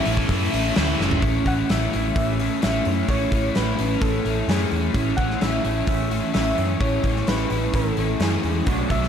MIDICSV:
0, 0, Header, 1, 7, 480
1, 0, Start_track
1, 0, Tempo, 465839
1, 1261, Time_signature, 4, 2, 24, 8
1, 9360, End_track
2, 0, Start_track
2, 0, Title_t, "Soft synth lead"
2, 0, Program_c, 0, 80
2, 0, Note_on_c, 0, 76, 96
2, 792, Note_off_c, 0, 76, 0
2, 1519, Note_on_c, 0, 78, 96
2, 1760, Note_on_c, 0, 76, 97
2, 1775, Note_off_c, 0, 78, 0
2, 2230, Note_off_c, 0, 76, 0
2, 2239, Note_on_c, 0, 76, 98
2, 2676, Note_off_c, 0, 76, 0
2, 2719, Note_on_c, 0, 76, 96
2, 3195, Note_on_c, 0, 73, 104
2, 3211, Note_off_c, 0, 76, 0
2, 3670, Note_on_c, 0, 71, 97
2, 3685, Note_off_c, 0, 73, 0
2, 4139, Note_on_c, 0, 69, 90
2, 4155, Note_off_c, 0, 71, 0
2, 4620, Note_off_c, 0, 69, 0
2, 4629, Note_on_c, 0, 68, 75
2, 4960, Note_off_c, 0, 68, 0
2, 5325, Note_on_c, 0, 78, 108
2, 5587, Note_on_c, 0, 76, 109
2, 5603, Note_off_c, 0, 78, 0
2, 6057, Note_off_c, 0, 76, 0
2, 6063, Note_on_c, 0, 76, 100
2, 6509, Note_off_c, 0, 76, 0
2, 6532, Note_on_c, 0, 76, 105
2, 7018, Note_on_c, 0, 73, 98
2, 7034, Note_off_c, 0, 76, 0
2, 7502, Note_on_c, 0, 71, 91
2, 7517, Note_off_c, 0, 73, 0
2, 7989, Note_on_c, 0, 69, 87
2, 8004, Note_off_c, 0, 71, 0
2, 8477, Note_on_c, 0, 68, 74
2, 8493, Note_off_c, 0, 69, 0
2, 8830, Note_off_c, 0, 68, 0
2, 9182, Note_on_c, 0, 76, 98
2, 9360, Note_off_c, 0, 76, 0
2, 9360, End_track
3, 0, Start_track
3, 0, Title_t, "Clean electric guitar"
3, 0, Program_c, 1, 27
3, 0, Note_on_c, 1, 57, 58
3, 824, Note_off_c, 1, 57, 0
3, 1033, Note_on_c, 1, 64, 75
3, 1040, Note_on_c, 1, 61, 64
3, 1052, Note_on_c, 1, 56, 65
3, 1253, Note_off_c, 1, 64, 0
3, 1256, Note_off_c, 1, 61, 0
3, 1262, Note_off_c, 1, 56, 0
3, 2231, Note_on_c, 1, 45, 89
3, 2236, Note_on_c, 1, 52, 88
3, 2245, Note_on_c, 1, 61, 88
3, 2251, Note_on_c, 1, 64, 93
3, 2707, Note_off_c, 1, 52, 0
3, 2715, Note_off_c, 1, 61, 0
3, 2727, Note_off_c, 1, 64, 0
3, 2933, Note_on_c, 1, 64, 72
3, 2946, Note_on_c, 1, 61, 64
3, 3178, Note_off_c, 1, 45, 0
3, 3192, Note_off_c, 1, 61, 0
3, 3200, Note_off_c, 1, 64, 0
3, 4131, Note_on_c, 1, 45, 79
3, 4140, Note_on_c, 1, 52, 80
3, 4144, Note_on_c, 1, 61, 96
3, 4150, Note_on_c, 1, 64, 86
3, 4611, Note_off_c, 1, 52, 0
3, 4629, Note_off_c, 1, 61, 0
3, 4635, Note_off_c, 1, 64, 0
3, 4852, Note_on_c, 1, 64, 75
3, 4861, Note_on_c, 1, 61, 69
3, 5080, Note_off_c, 1, 45, 0
3, 5096, Note_off_c, 1, 61, 0
3, 5102, Note_off_c, 1, 64, 0
3, 6046, Note_on_c, 1, 45, 82
3, 6050, Note_on_c, 1, 52, 91
3, 6067, Note_on_c, 1, 61, 99
3, 6067, Note_on_c, 1, 64, 100
3, 6519, Note_off_c, 1, 52, 0
3, 6542, Note_off_c, 1, 61, 0
3, 6545, Note_off_c, 1, 64, 0
3, 6774, Note_off_c, 1, 45, 0
3, 6777, Note_on_c, 1, 64, 71
3, 6784, Note_on_c, 1, 61, 65
3, 7016, Note_off_c, 1, 64, 0
3, 7021, Note_off_c, 1, 61, 0
3, 7983, Note_on_c, 1, 45, 86
3, 7992, Note_on_c, 1, 52, 86
3, 7999, Note_on_c, 1, 61, 88
3, 8000, Note_on_c, 1, 64, 100
3, 8454, Note_off_c, 1, 52, 0
3, 8475, Note_off_c, 1, 61, 0
3, 8476, Note_off_c, 1, 64, 0
3, 8701, Note_on_c, 1, 64, 68
3, 8703, Note_off_c, 1, 45, 0
3, 8712, Note_on_c, 1, 61, 63
3, 8723, Note_on_c, 1, 56, 57
3, 8928, Note_off_c, 1, 64, 0
3, 8939, Note_off_c, 1, 56, 0
3, 8943, Note_on_c, 1, 57, 93
3, 8948, Note_off_c, 1, 61, 0
3, 8953, Note_on_c, 1, 66, 101
3, 8954, Note_on_c, 1, 73, 94
3, 9171, Note_off_c, 1, 73, 0
3, 9175, Note_on_c, 1, 73, 72
3, 9180, Note_off_c, 1, 66, 0
3, 9184, Note_on_c, 1, 66, 71
3, 9192, Note_off_c, 1, 57, 0
3, 9197, Note_on_c, 1, 57, 58
3, 9360, Note_off_c, 1, 57, 0
3, 9360, Note_off_c, 1, 66, 0
3, 9360, Note_off_c, 1, 73, 0
3, 9360, End_track
4, 0, Start_track
4, 0, Title_t, "Overdriven electric guitar"
4, 0, Program_c, 2, 29
4, 0, Note_on_c, 2, 52, 75
4, 59, Note_on_c, 2, 64, 73
4, 69, Note_on_c, 2, 61, 63
4, 82, Note_on_c, 2, 57, 57
4, 298, Note_off_c, 2, 52, 0
4, 520, Note_off_c, 2, 64, 0
4, 532, Note_on_c, 2, 64, 76
4, 534, Note_off_c, 2, 61, 0
4, 546, Note_on_c, 2, 61, 65
4, 547, Note_off_c, 2, 57, 0
4, 560, Note_on_c, 2, 57, 68
4, 759, Note_off_c, 2, 57, 0
4, 765, Note_on_c, 2, 52, 70
4, 767, Note_off_c, 2, 61, 0
4, 771, Note_on_c, 2, 57, 82
4, 775, Note_off_c, 2, 64, 0
4, 779, Note_on_c, 2, 61, 77
4, 787, Note_on_c, 2, 64, 83
4, 1238, Note_off_c, 2, 52, 0
4, 1241, Note_off_c, 2, 57, 0
4, 1245, Note_off_c, 2, 61, 0
4, 1250, Note_off_c, 2, 64, 0
4, 1250, Note_on_c, 2, 45, 91
4, 1256, Note_on_c, 2, 52, 100
4, 1261, Note_on_c, 2, 57, 95
4, 1270, Note_on_c, 2, 64, 107
4, 1271, Note_on_c, 2, 61, 99
4, 1491, Note_off_c, 2, 64, 0
4, 1495, Note_on_c, 2, 64, 75
4, 1504, Note_off_c, 2, 61, 0
4, 1509, Note_on_c, 2, 61, 66
4, 1514, Note_off_c, 2, 57, 0
4, 1518, Note_on_c, 2, 57, 58
4, 1733, Note_off_c, 2, 52, 0
4, 1737, Note_on_c, 2, 52, 77
4, 1742, Note_off_c, 2, 57, 0
4, 1746, Note_on_c, 2, 57, 74
4, 1750, Note_off_c, 2, 61, 0
4, 1755, Note_on_c, 2, 61, 76
4, 1758, Note_off_c, 2, 64, 0
4, 1762, Note_on_c, 2, 64, 80
4, 1977, Note_off_c, 2, 64, 0
4, 1981, Note_on_c, 2, 64, 73
4, 1992, Note_off_c, 2, 61, 0
4, 1994, Note_off_c, 2, 57, 0
4, 1997, Note_on_c, 2, 61, 63
4, 1998, Note_on_c, 2, 57, 62
4, 2462, Note_off_c, 2, 64, 0
4, 2466, Note_on_c, 2, 64, 67
4, 2474, Note_off_c, 2, 61, 0
4, 2478, Note_on_c, 2, 61, 65
4, 2485, Note_off_c, 2, 57, 0
4, 2489, Note_on_c, 2, 57, 59
4, 2689, Note_off_c, 2, 45, 0
4, 2693, Note_on_c, 2, 45, 80
4, 2696, Note_off_c, 2, 52, 0
4, 2700, Note_on_c, 2, 52, 97
4, 2701, Note_off_c, 2, 57, 0
4, 2706, Note_on_c, 2, 57, 90
4, 2710, Note_off_c, 2, 61, 0
4, 2712, Note_off_c, 2, 64, 0
4, 2714, Note_on_c, 2, 61, 87
4, 2716, Note_on_c, 2, 64, 98
4, 3177, Note_off_c, 2, 45, 0
4, 3181, Note_off_c, 2, 52, 0
4, 3181, Note_on_c, 2, 45, 102
4, 3186, Note_on_c, 2, 52, 101
4, 3191, Note_off_c, 2, 57, 0
4, 3195, Note_on_c, 2, 57, 115
4, 3199, Note_off_c, 2, 61, 0
4, 3200, Note_off_c, 2, 64, 0
4, 3203, Note_on_c, 2, 61, 101
4, 3204, Note_on_c, 2, 64, 105
4, 3421, Note_off_c, 2, 64, 0
4, 3425, Note_on_c, 2, 64, 64
4, 3435, Note_off_c, 2, 61, 0
4, 3439, Note_on_c, 2, 61, 59
4, 3443, Note_off_c, 2, 57, 0
4, 3447, Note_on_c, 2, 57, 57
4, 3665, Note_off_c, 2, 52, 0
4, 3669, Note_on_c, 2, 52, 80
4, 3674, Note_off_c, 2, 57, 0
4, 3678, Note_on_c, 2, 57, 69
4, 3683, Note_off_c, 2, 61, 0
4, 3687, Note_on_c, 2, 61, 79
4, 3689, Note_off_c, 2, 64, 0
4, 3693, Note_on_c, 2, 64, 88
4, 3898, Note_off_c, 2, 64, 0
4, 3902, Note_on_c, 2, 64, 68
4, 3905, Note_off_c, 2, 61, 0
4, 3910, Note_on_c, 2, 61, 64
4, 3913, Note_off_c, 2, 57, 0
4, 3917, Note_on_c, 2, 57, 59
4, 4371, Note_off_c, 2, 64, 0
4, 4375, Note_on_c, 2, 64, 63
4, 4383, Note_off_c, 2, 61, 0
4, 4387, Note_on_c, 2, 61, 65
4, 4391, Note_off_c, 2, 57, 0
4, 4395, Note_on_c, 2, 57, 61
4, 4621, Note_off_c, 2, 45, 0
4, 4623, Note_off_c, 2, 52, 0
4, 4625, Note_on_c, 2, 45, 95
4, 4627, Note_on_c, 2, 52, 81
4, 4631, Note_off_c, 2, 57, 0
4, 4633, Note_off_c, 2, 61, 0
4, 4635, Note_on_c, 2, 57, 103
4, 4638, Note_on_c, 2, 61, 98
4, 4639, Note_off_c, 2, 64, 0
4, 4643, Note_on_c, 2, 64, 85
4, 5098, Note_off_c, 2, 45, 0
4, 5100, Note_off_c, 2, 52, 0
4, 5102, Note_on_c, 2, 45, 97
4, 5104, Note_off_c, 2, 57, 0
4, 5104, Note_on_c, 2, 52, 98
4, 5108, Note_on_c, 2, 57, 114
4, 5113, Note_off_c, 2, 61, 0
4, 5117, Note_on_c, 2, 61, 103
4, 5119, Note_off_c, 2, 64, 0
4, 5123, Note_on_c, 2, 64, 106
4, 5333, Note_off_c, 2, 64, 0
4, 5337, Note_on_c, 2, 64, 64
4, 5345, Note_off_c, 2, 61, 0
4, 5349, Note_on_c, 2, 61, 66
4, 5356, Note_off_c, 2, 57, 0
4, 5360, Note_on_c, 2, 57, 63
4, 5569, Note_off_c, 2, 52, 0
4, 5573, Note_on_c, 2, 52, 76
4, 5578, Note_off_c, 2, 57, 0
4, 5582, Note_on_c, 2, 57, 81
4, 5586, Note_off_c, 2, 61, 0
4, 5590, Note_on_c, 2, 61, 80
4, 5593, Note_off_c, 2, 64, 0
4, 5597, Note_on_c, 2, 64, 83
4, 5811, Note_off_c, 2, 64, 0
4, 5815, Note_on_c, 2, 64, 74
4, 5819, Note_off_c, 2, 61, 0
4, 5824, Note_on_c, 2, 61, 63
4, 5830, Note_off_c, 2, 57, 0
4, 5834, Note_on_c, 2, 57, 67
4, 6275, Note_off_c, 2, 64, 0
4, 6287, Note_on_c, 2, 64, 71
4, 6298, Note_off_c, 2, 61, 0
4, 6303, Note_on_c, 2, 61, 69
4, 6308, Note_off_c, 2, 57, 0
4, 6312, Note_on_c, 2, 57, 61
4, 6514, Note_off_c, 2, 45, 0
4, 6518, Note_on_c, 2, 45, 85
4, 6525, Note_off_c, 2, 52, 0
4, 6525, Note_off_c, 2, 57, 0
4, 6529, Note_on_c, 2, 52, 91
4, 6529, Note_on_c, 2, 57, 93
4, 6531, Note_off_c, 2, 64, 0
4, 6532, Note_off_c, 2, 61, 0
4, 6536, Note_on_c, 2, 61, 108
4, 6543, Note_on_c, 2, 64, 102
4, 6991, Note_off_c, 2, 45, 0
4, 7000, Note_off_c, 2, 52, 0
4, 7003, Note_on_c, 2, 45, 98
4, 7013, Note_on_c, 2, 52, 98
4, 7014, Note_off_c, 2, 57, 0
4, 7017, Note_off_c, 2, 64, 0
4, 7018, Note_on_c, 2, 57, 95
4, 7022, Note_off_c, 2, 61, 0
4, 7026, Note_on_c, 2, 61, 106
4, 7029, Note_on_c, 2, 64, 108
4, 7240, Note_off_c, 2, 64, 0
4, 7253, Note_on_c, 2, 64, 68
4, 7262, Note_off_c, 2, 61, 0
4, 7266, Note_on_c, 2, 61, 59
4, 7272, Note_off_c, 2, 57, 0
4, 7276, Note_on_c, 2, 57, 56
4, 7488, Note_off_c, 2, 52, 0
4, 7493, Note_off_c, 2, 45, 0
4, 7501, Note_off_c, 2, 57, 0
4, 7501, Note_on_c, 2, 52, 70
4, 7506, Note_off_c, 2, 61, 0
4, 7506, Note_on_c, 2, 57, 80
4, 7509, Note_off_c, 2, 64, 0
4, 7510, Note_on_c, 2, 61, 88
4, 7522, Note_on_c, 2, 64, 80
4, 7732, Note_off_c, 2, 64, 0
4, 7744, Note_on_c, 2, 64, 68
4, 7752, Note_off_c, 2, 61, 0
4, 7756, Note_on_c, 2, 61, 60
4, 7760, Note_off_c, 2, 57, 0
4, 7764, Note_on_c, 2, 57, 62
4, 7982, Note_off_c, 2, 52, 0
4, 8204, Note_off_c, 2, 64, 0
4, 8217, Note_on_c, 2, 64, 66
4, 8228, Note_off_c, 2, 61, 0
4, 8232, Note_on_c, 2, 61, 64
4, 8235, Note_off_c, 2, 57, 0
4, 8239, Note_on_c, 2, 57, 58
4, 8459, Note_on_c, 2, 45, 90
4, 8464, Note_on_c, 2, 52, 84
4, 8467, Note_off_c, 2, 57, 0
4, 8467, Note_off_c, 2, 64, 0
4, 8471, Note_off_c, 2, 61, 0
4, 8472, Note_on_c, 2, 57, 90
4, 8475, Note_on_c, 2, 61, 95
4, 8480, Note_on_c, 2, 64, 96
4, 8927, Note_off_c, 2, 45, 0
4, 8929, Note_off_c, 2, 52, 0
4, 8935, Note_on_c, 2, 47, 97
4, 8937, Note_off_c, 2, 64, 0
4, 8940, Note_off_c, 2, 57, 0
4, 8944, Note_on_c, 2, 54, 102
4, 8947, Note_off_c, 2, 61, 0
4, 8951, Note_on_c, 2, 59, 108
4, 8959, Note_on_c, 2, 62, 119
4, 9182, Note_off_c, 2, 62, 0
4, 9187, Note_on_c, 2, 62, 68
4, 9198, Note_off_c, 2, 59, 0
4, 9200, Note_off_c, 2, 54, 0
4, 9202, Note_on_c, 2, 59, 58
4, 9204, Note_on_c, 2, 54, 60
4, 9360, Note_off_c, 2, 47, 0
4, 9360, Note_off_c, 2, 54, 0
4, 9360, Note_off_c, 2, 59, 0
4, 9360, Note_off_c, 2, 62, 0
4, 9360, End_track
5, 0, Start_track
5, 0, Title_t, "Distorted electric guitar"
5, 0, Program_c, 3, 30
5, 0, Note_on_c, 3, 45, 83
5, 0, Note_on_c, 3, 52, 90
5, 0, Note_on_c, 3, 57, 98
5, 1241, Note_off_c, 3, 45, 0
5, 1248, Note_off_c, 3, 52, 0
5, 1254, Note_off_c, 3, 57, 0
5, 9360, End_track
6, 0, Start_track
6, 0, Title_t, "Picked electric bass"
6, 0, Program_c, 4, 34
6, 66, Note_on_c, 4, 33, 86
6, 238, Note_off_c, 4, 33, 0
6, 301, Note_on_c, 4, 42, 90
6, 475, Note_off_c, 4, 42, 0
6, 544, Note_on_c, 4, 33, 86
6, 717, Note_off_c, 4, 33, 0
6, 793, Note_on_c, 4, 38, 92
6, 962, Note_off_c, 4, 38, 0
6, 1030, Note_on_c, 4, 30, 86
6, 1200, Note_off_c, 4, 30, 0
6, 1266, Note_on_c, 4, 33, 98
6, 1429, Note_off_c, 4, 33, 0
6, 1501, Note_on_c, 4, 33, 84
6, 1667, Note_off_c, 4, 33, 0
6, 1755, Note_on_c, 4, 33, 84
6, 1915, Note_off_c, 4, 33, 0
6, 2003, Note_on_c, 4, 33, 86
6, 2161, Note_off_c, 4, 33, 0
6, 2220, Note_on_c, 4, 33, 83
6, 2551, Note_off_c, 4, 33, 0
6, 2717, Note_on_c, 4, 33, 87
6, 2877, Note_off_c, 4, 33, 0
6, 2952, Note_on_c, 4, 42, 86
6, 3113, Note_off_c, 4, 42, 0
6, 3178, Note_on_c, 4, 33, 95
6, 3344, Note_off_c, 4, 33, 0
6, 3422, Note_on_c, 4, 33, 89
6, 3587, Note_off_c, 4, 33, 0
6, 3673, Note_on_c, 4, 33, 91
6, 3834, Note_off_c, 4, 33, 0
6, 3908, Note_on_c, 4, 33, 87
6, 4071, Note_off_c, 4, 33, 0
6, 4139, Note_on_c, 4, 33, 85
6, 4305, Note_off_c, 4, 33, 0
6, 4378, Note_on_c, 4, 33, 89
6, 4544, Note_off_c, 4, 33, 0
6, 4614, Note_on_c, 4, 42, 90
6, 4782, Note_off_c, 4, 42, 0
6, 4861, Note_on_c, 4, 40, 85
6, 5026, Note_off_c, 4, 40, 0
6, 5090, Note_on_c, 4, 33, 99
6, 5259, Note_off_c, 4, 33, 0
6, 5334, Note_on_c, 4, 33, 85
6, 5502, Note_off_c, 4, 33, 0
6, 5581, Note_on_c, 4, 33, 86
6, 5747, Note_off_c, 4, 33, 0
6, 5818, Note_on_c, 4, 33, 87
6, 5984, Note_off_c, 4, 33, 0
6, 6053, Note_on_c, 4, 33, 79
6, 6387, Note_off_c, 4, 33, 0
6, 6548, Note_on_c, 4, 33, 94
6, 6711, Note_off_c, 4, 33, 0
6, 6782, Note_on_c, 4, 42, 82
6, 6947, Note_off_c, 4, 42, 0
6, 7016, Note_on_c, 4, 33, 94
6, 7183, Note_off_c, 4, 33, 0
6, 7258, Note_on_c, 4, 33, 84
6, 7425, Note_off_c, 4, 33, 0
6, 7496, Note_on_c, 4, 33, 82
6, 7664, Note_off_c, 4, 33, 0
6, 7733, Note_on_c, 4, 33, 83
6, 7902, Note_off_c, 4, 33, 0
6, 7968, Note_on_c, 4, 33, 84
6, 8139, Note_off_c, 4, 33, 0
6, 8212, Note_on_c, 4, 33, 91
6, 8381, Note_off_c, 4, 33, 0
6, 8448, Note_on_c, 4, 42, 85
6, 8619, Note_off_c, 4, 42, 0
6, 8695, Note_on_c, 4, 40, 75
6, 8863, Note_off_c, 4, 40, 0
6, 8936, Note_on_c, 4, 35, 99
6, 9104, Note_off_c, 4, 35, 0
6, 9170, Note_on_c, 4, 35, 90
6, 9340, Note_off_c, 4, 35, 0
6, 9360, End_track
7, 0, Start_track
7, 0, Title_t, "Drums"
7, 56, Note_on_c, 9, 46, 66
7, 160, Note_off_c, 9, 46, 0
7, 178, Note_on_c, 9, 36, 87
7, 281, Note_off_c, 9, 36, 0
7, 300, Note_on_c, 9, 36, 108
7, 302, Note_on_c, 9, 46, 86
7, 403, Note_off_c, 9, 36, 0
7, 405, Note_off_c, 9, 46, 0
7, 551, Note_on_c, 9, 46, 69
7, 654, Note_off_c, 9, 46, 0
7, 778, Note_on_c, 9, 46, 81
7, 787, Note_on_c, 9, 38, 102
7, 881, Note_off_c, 9, 46, 0
7, 890, Note_off_c, 9, 38, 0
7, 1040, Note_on_c, 9, 38, 62
7, 1143, Note_off_c, 9, 38, 0
7, 1147, Note_on_c, 9, 43, 93
7, 1250, Note_off_c, 9, 43, 0
7, 1259, Note_on_c, 9, 46, 70
7, 1261, Note_on_c, 9, 36, 100
7, 1362, Note_off_c, 9, 46, 0
7, 1364, Note_off_c, 9, 36, 0
7, 1503, Note_on_c, 9, 36, 82
7, 1508, Note_on_c, 9, 46, 52
7, 1606, Note_off_c, 9, 36, 0
7, 1611, Note_off_c, 9, 46, 0
7, 1745, Note_on_c, 9, 46, 72
7, 1753, Note_on_c, 9, 38, 102
7, 1848, Note_off_c, 9, 46, 0
7, 1856, Note_off_c, 9, 38, 0
7, 1992, Note_on_c, 9, 46, 58
7, 2095, Note_off_c, 9, 46, 0
7, 2225, Note_on_c, 9, 36, 116
7, 2228, Note_on_c, 9, 46, 76
7, 2328, Note_off_c, 9, 36, 0
7, 2331, Note_off_c, 9, 46, 0
7, 2468, Note_on_c, 9, 46, 59
7, 2571, Note_off_c, 9, 46, 0
7, 2701, Note_on_c, 9, 46, 69
7, 2709, Note_on_c, 9, 38, 106
7, 2804, Note_off_c, 9, 46, 0
7, 2812, Note_off_c, 9, 38, 0
7, 2939, Note_on_c, 9, 46, 59
7, 3042, Note_off_c, 9, 46, 0
7, 3178, Note_on_c, 9, 46, 78
7, 3180, Note_on_c, 9, 36, 105
7, 3281, Note_off_c, 9, 46, 0
7, 3283, Note_off_c, 9, 36, 0
7, 3421, Note_on_c, 9, 36, 87
7, 3421, Note_on_c, 9, 46, 63
7, 3524, Note_off_c, 9, 36, 0
7, 3524, Note_off_c, 9, 46, 0
7, 3657, Note_on_c, 9, 46, 72
7, 3665, Note_on_c, 9, 38, 104
7, 3760, Note_off_c, 9, 46, 0
7, 3768, Note_off_c, 9, 38, 0
7, 3901, Note_on_c, 9, 46, 64
7, 4004, Note_off_c, 9, 46, 0
7, 4136, Note_on_c, 9, 46, 79
7, 4138, Note_on_c, 9, 36, 113
7, 4239, Note_off_c, 9, 46, 0
7, 4242, Note_off_c, 9, 36, 0
7, 4385, Note_on_c, 9, 46, 59
7, 4488, Note_off_c, 9, 46, 0
7, 4624, Note_on_c, 9, 46, 74
7, 4632, Note_on_c, 9, 38, 103
7, 4727, Note_off_c, 9, 46, 0
7, 4735, Note_off_c, 9, 38, 0
7, 4856, Note_on_c, 9, 46, 54
7, 4959, Note_off_c, 9, 46, 0
7, 5095, Note_on_c, 9, 36, 103
7, 5097, Note_on_c, 9, 46, 68
7, 5198, Note_off_c, 9, 36, 0
7, 5200, Note_off_c, 9, 46, 0
7, 5334, Note_on_c, 9, 46, 55
7, 5336, Note_on_c, 9, 36, 94
7, 5437, Note_off_c, 9, 46, 0
7, 5439, Note_off_c, 9, 36, 0
7, 5468, Note_on_c, 9, 38, 30
7, 5571, Note_off_c, 9, 38, 0
7, 5578, Note_on_c, 9, 46, 68
7, 5586, Note_on_c, 9, 38, 100
7, 5681, Note_off_c, 9, 46, 0
7, 5689, Note_off_c, 9, 38, 0
7, 5817, Note_on_c, 9, 46, 58
7, 5920, Note_off_c, 9, 46, 0
7, 6049, Note_on_c, 9, 46, 78
7, 6053, Note_on_c, 9, 36, 116
7, 6152, Note_off_c, 9, 46, 0
7, 6157, Note_off_c, 9, 36, 0
7, 6299, Note_on_c, 9, 46, 58
7, 6402, Note_off_c, 9, 46, 0
7, 6532, Note_on_c, 9, 46, 76
7, 6540, Note_on_c, 9, 38, 99
7, 6635, Note_off_c, 9, 46, 0
7, 6643, Note_off_c, 9, 38, 0
7, 6778, Note_on_c, 9, 46, 59
7, 6881, Note_off_c, 9, 46, 0
7, 7011, Note_on_c, 9, 46, 74
7, 7013, Note_on_c, 9, 36, 95
7, 7114, Note_off_c, 9, 46, 0
7, 7116, Note_off_c, 9, 36, 0
7, 7250, Note_on_c, 9, 46, 60
7, 7253, Note_on_c, 9, 36, 86
7, 7353, Note_off_c, 9, 46, 0
7, 7356, Note_off_c, 9, 36, 0
7, 7384, Note_on_c, 9, 38, 31
7, 7487, Note_off_c, 9, 38, 0
7, 7493, Note_on_c, 9, 46, 72
7, 7501, Note_on_c, 9, 38, 109
7, 7596, Note_off_c, 9, 46, 0
7, 7604, Note_off_c, 9, 38, 0
7, 7728, Note_on_c, 9, 46, 62
7, 7831, Note_off_c, 9, 46, 0
7, 7971, Note_on_c, 9, 46, 82
7, 7972, Note_on_c, 9, 36, 107
7, 8074, Note_off_c, 9, 46, 0
7, 8075, Note_off_c, 9, 36, 0
7, 8210, Note_on_c, 9, 46, 61
7, 8313, Note_off_c, 9, 46, 0
7, 8447, Note_on_c, 9, 46, 71
7, 8456, Note_on_c, 9, 38, 108
7, 8550, Note_off_c, 9, 46, 0
7, 8559, Note_off_c, 9, 38, 0
7, 8688, Note_on_c, 9, 46, 55
7, 8791, Note_off_c, 9, 46, 0
7, 8928, Note_on_c, 9, 46, 70
7, 8933, Note_on_c, 9, 36, 97
7, 9031, Note_off_c, 9, 46, 0
7, 9036, Note_off_c, 9, 36, 0
7, 9172, Note_on_c, 9, 36, 87
7, 9173, Note_on_c, 9, 46, 54
7, 9275, Note_off_c, 9, 36, 0
7, 9276, Note_off_c, 9, 46, 0
7, 9306, Note_on_c, 9, 38, 30
7, 9360, Note_off_c, 9, 38, 0
7, 9360, End_track
0, 0, End_of_file